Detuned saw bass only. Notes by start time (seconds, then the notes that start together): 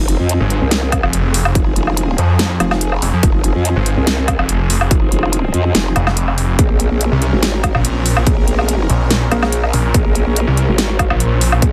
0.40 G1
1.03 F1
1.45 F1
2.18 F2
3.02 F1
3.13 F2
3.76 G1
4.39 F1
4.81 F1
5.96 F1
6.38 F1
7.12 C2
7.75 A#1
8.17 A#1
8.90 A#1
9.73 A#1
9.85 A#1
10.47 C2
11.10 A#1
11.52 A#1